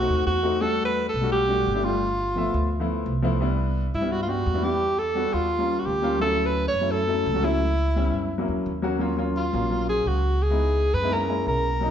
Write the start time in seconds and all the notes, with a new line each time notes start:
Already playing: F#4
0.00 A3 C4 D#4 F#4
0.09 D#2
0.27 E2 F#4
0.43 A3 C4 D#4 F#4
0.61 G3 A3 D4 F#4 A4
0.85 B4
1.09 A4
1.14 B1
1.21 G3 A3 D4 F#4
1.32 G4
1.48 G3 A3 D4 F#4
1.66 G1
1.74 G3 A3 D4 E4
1.83 G3 A3 D4 F4 G4
2.35 F3 A3 B3 E5
2.54 D2
2.80 F3 A3 B3 E4
3.06 C2
3.22 F3 A3 B3 E4
3.40 G3 B3 D4 E4
3.94 G2 E4
4.01 G3 B3 D4 E4
4.12 F#4
4.23 F4
4.27 G3 B3 D4 F#4 G4
4.46 E2
4.54 G3 B3 D4 E4
4.62 G3 B3 D4 E4 G4
4.99 A4
5.15 G3 B3 D4 F#4
5.33 D#2 F4
5.58 G3 A#3 C#4 F4
5.79 F#4
5.86 D2 G4
6.02 G3 A#3 C#4 F4
6.20 F#3 A3 C#4 E4 A4
6.45 B4
6.68 C#5
6.74 F#2
6.81 F#3 A3 C#4 E4
6.91 A4
7.08 F#3 A3 C#4 E4
7.26 C#2
7.34 F#3 A3 C#4 F#4
7.43 F#3 A3 C#4 E4
7.96 G3 B3 C#4 E4
8.13 F#2
8.38 F#3 A#3 C#4 E4
8.48 E2
8.66 D#2
8.82 F#3 A#3 C#4 F#4
8.99 F#3 A#3 C#4 F4
9.17 F#3 A#3 C#4 F4
9.37 F4
9.53 A#1 F#3 A#3 C#4 F4
9.70 F#3 A#3 C#4 F4
9.89 G#4
10.06 C#2 F#4
10.42 G#4
10.50 G#3 B3 D#4 E4
10.94 F#2 B4
11.02 G#3 B3 D#4 E4
11.11 G#3 A#3 C#4 E4 A#4
11.28 G#3 A#3 C#4 E4
11.47 B1 A#4
11.81 F#3 A#3 C#4 D#4